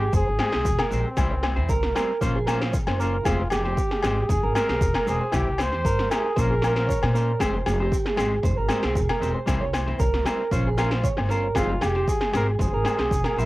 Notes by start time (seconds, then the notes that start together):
Already playing: G4 G#4
0.13 F1 G#4 C5, kick, maracas
0.28 G#1, muted clean electric guitar stroke
0.39 G#3 C4 G4 C5, snare, low agogo
0.43 G#4
0.52 C2 C4 G4 G#4 C5, snare
0.65 E1, kick, maracas
0.79 A#4, snare, low agogo
0.91 A#1 G#3 C4 G4 C5, snare, maracas
0.95 C4
1.17 C2 G3 C4 E4 C5, kick, snare, low agogo, maracas
1.31 C2, muted clean electric guitar stroke
1.43 C5, snare, low agogo
1.56 E2 C4 E4 C5, snare
1.69 C2 A#4, kick, maracas
1.83 snare
1.95 G3 C4 A#4 C5, snare, low agogo, maracas
2.21 A#1 A#3 C#4 F4 C5, kick, snare, maracas
2.35 G#4
2.46 A#3 C#4 F4 A#4, snare, low agogo, maracas
2.50 C5
2.60 C#4 F4 C5, snare
2.73 muted clean electric guitar stroke, kick, maracas
2.87 F#1 C5, snare, low agogo
3.00 A#3 C#4 F4 A#4 C5, maracas
3.24 F1 G#3 C4 F4 G4 G#4 C5, kick, snare, low agogo, maracas
3.40 muted clean electric guitar stroke
3.50 F1 G4 G#4, snare, low agogo, maracas
3.65 C4 G4 C5, snare
3.77 kick, maracas
3.91 G#4, snare
4.03 G#1 G#3 C4 G4 G#4 C5, snare, low agogo, maracas
4.29 F1 G#4, kick, snare, maracas
4.43 G#1 A#4
4.55 G#3 C4 G4 A#4 C5, snare, low agogo, maracas
4.69 C2 C4 G4 G#4 C5, snare
4.81 E1, kick, maracas
4.94 A#4, snare, low agogo
5.06 E1 G#3 C4 G4 G#4 C5, snare, maracas
5.21 C5
5.32 C2 E4 G4, muted clean electric guitar stroke, kick, snare, low agogo, maracas
5.47 C2
5.58 C5, snare, low agogo, maracas
5.72 E2 G4 C5, snare
5.85 G2 A#4, kick, maracas
5.99 snare
6.10 E4 G4 G#4 A#4 C5, snare, low agogo, maracas
6.36 A#1 A#3 C#4 F4 A#4 C5, kick, snare, maracas
6.50 G#4
6.61 A#3 C#4 F4 A#4, snare, low agogo, maracas
6.65 C5
6.75 C#4 F4 C5, snare
6.88 C#5, kick, maracas
7.02 A#2 C5, snare, low agogo
7.14 A#3 C#4 F4 A#4 C5, snare, maracas
7.39 F1 G#3 C4 G4 G#4 C5, kick, snare, low agogo, maracas
7.55 C5
7.66 F1 G#4, snare, low agogo, maracas
7.80 C4 G4 C5
7.92 kick, maracas
8.06 G#4, snare
8.16 G#1 G#3 C4 G4 G#4 C5, snare, low agogo, maracas
8.43 F1 C5, kick, snare, maracas
8.57 G#1 A#4
8.68 G#3 C4 G4 C5, snare, low agogo, maracas
8.82 C2 C4 G4 G#4 C5, snare
8.95 E1, kick, maracas
9.09 A#4, snare, low agogo
9.20 E1 G#3 C4 G4 C5, snare, maracas
9.35 C5
9.46 C2 G3 C4 E4 C5, kick, snare, low agogo, maracas
9.61 C2 C#5
9.73 C5, snare, low agogo, maracas
9.87 E2 C4 E4 C5, snare
10.00 C2 A#4, kick, maracas
10.14 snare
10.24 G3 C4 E4 A#4 C5, snare, low agogo, maracas
10.51 A#1 C#4 F4 C5, kick, snare, maracas
10.67 G#4
10.77 C#4 F4 A#4 C5, snare, low agogo, maracas
10.91 F4 C5, snare
11.03 C#5, kick, maracas
11.17 G1 C5, snare, low agogo
11.29 C#4 F4 A#4 C5, snare, maracas
11.55 F1 G#3 C4 F4 G4 G#4 C5, kick, snare, low agogo, maracas
11.69 F5
11.81 F1 G4 G#4, snare, low agogo, maracas
11.95 C4 G4 C5, snare
12.08 G#4, kick, maracas
12.21 G#4, snare
12.32 G#1 G#3 C4 G4 G#4 A#4 C5, snare, low agogo, maracas
12.59 F1 G#4 C5, kick, snare, maracas
12.73 G#1 A#4
12.84 G#3 C4 G4 C5, snare, low agogo, maracas
12.97 C2 C4 G4 G#4 C5, snare
13.11 E1, kick, maracas
13.24 A#4, snare, low agogo
13.36 A#1 G#3 C4 E4 G4 C5, maracas